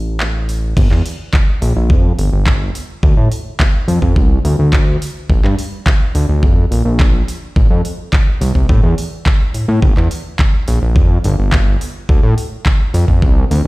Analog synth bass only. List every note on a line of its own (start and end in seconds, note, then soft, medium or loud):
0.00 0.74 A1 medium
0.77 0.88 G1 loud
0.91 1.02 E2 medium
1.62 1.73 A#1 medium
1.76 1.92 A#1 medium
1.90 2.13 F2 medium
2.18 2.30 G1 medium
2.32 2.70 G1 medium
3.03 3.15 D2 loud
3.17 3.29 A2 medium
3.88 3.99 F2 medium
4.02 4.18 F2 medium
4.16 4.39 C2 loud
4.45 4.56 D2 medium
4.59 4.97 D2 medium
5.29 5.41 A#1 loud
5.44 5.55 G2 medium
6.15 6.26 D2 medium
6.29 6.44 D2 medium
6.43 6.66 F2 loud
6.71 6.83 A#1 medium
6.85 7.23 A#1 medium
7.56 7.68 A1 loud
7.70 7.82 F2 medium
8.41 8.52 C2 medium
8.55 8.66 C2 medium
8.69 8.81 A2 medium
8.83 8.95 E2 medium
9.54 9.66 A2 soft
9.68 9.80 A2 medium
9.82 9.94 G1 loud
9.97 10.08 E2 loud
10.68 10.79 A#1 medium
10.82 10.97 A#1 medium
10.96 11.18 F2 medium
11.25 11.36 G1 medium
11.39 11.76 G1 medium
12.09 12.20 D2 loud
12.23 12.34 A2 medium
12.94 13.05 F2 medium
13.08 13.24 F2 medium
13.22 13.45 C2 loud
13.51 13.62 D2 medium